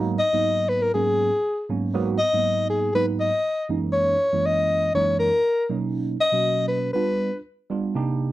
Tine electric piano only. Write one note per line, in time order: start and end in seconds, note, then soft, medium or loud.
0.00 0.17 G#2 loud
0.00 0.17 F#3 medium
0.00 0.17 A#3 medium
0.00 0.17 B3 medium
0.00 0.18 D#4 loud
0.20 0.26 B3 soft
0.33 0.89 G#2 medium
0.33 0.89 F#3 medium
0.33 0.90 A#3 medium
0.33 0.90 B3 medium
0.33 0.90 D#4 medium
0.94 1.29 G#2 medium
0.94 1.29 F#3 medium
0.94 1.29 A#3 medium
0.94 1.29 B3 medium
0.94 1.30 C#4 medium
1.32 1.38 B3 soft
1.69 1.92 G#2 medium
1.69 1.92 F#3 medium
1.69 1.92 A#3 medium
1.69 1.92 B3 medium
1.69 1.93 C#4 medium
1.94 2.17 G#2 loud
1.94 2.17 F#3 loud
1.94 2.17 A#3 medium
1.94 2.18 B3 loud
1.94 2.18 F#4 loud
2.20 2.26 B3 soft
2.33 2.89 G#2 medium
2.33 2.90 F#3 medium
2.33 2.90 A#3 medium
2.33 2.90 B3 medium
2.33 2.90 D#4 medium
2.94 3.29 G#2 medium
2.94 3.29 F#3 medium
2.94 3.30 A#3 medium
2.94 3.30 B3 medium
2.94 3.30 D#4 medium
3.69 4.15 F#2 medium
3.69 4.15 E3 medium
3.69 4.16 G#3 medium
3.69 4.15 A#3 medium
3.69 4.16 C#4 medium
3.69 4.16 D#4 medium
4.32 4.89 F#2 medium
4.32 4.90 E3 medium
4.32 4.89 G#3 medium
4.32 4.90 A#3 medium
4.32 4.90 C#4 medium
4.32 4.90 E4 medium
4.94 5.29 F#2 medium
4.94 5.29 E3 medium
4.94 5.29 G#3 medium
4.94 5.29 A#3 medium
4.94 5.29 C#4 medium
4.94 5.30 D#4 medium
5.69 6.15 B2 medium
5.69 6.15 F#3 medium
5.69 6.16 A#3 medium
5.69 6.16 C#4 medium
5.69 6.16 D#4 medium
6.19 6.26 C#4 soft
6.32 6.89 B2 medium
6.32 6.89 F#3 medium
6.32 6.90 A#3 medium
6.32 6.90 C#4 medium
6.32 6.90 F#4 medium
6.94 7.29 G3 medium
6.94 7.30 B3 medium
6.94 7.30 D4 medium
6.94 7.30 F4 medium
7.33 7.39 D4 soft
7.33 7.39 F4 soft
7.70 7.93 G3 medium
7.70 7.93 B3 medium
7.70 7.93 D4 medium
7.70 7.94 F4 medium
7.95 8.29 C3 loud
7.95 8.30 A#3 medium
7.95 8.30 D4 medium
7.95 8.30 D#4 medium
7.95 8.30 G4 loud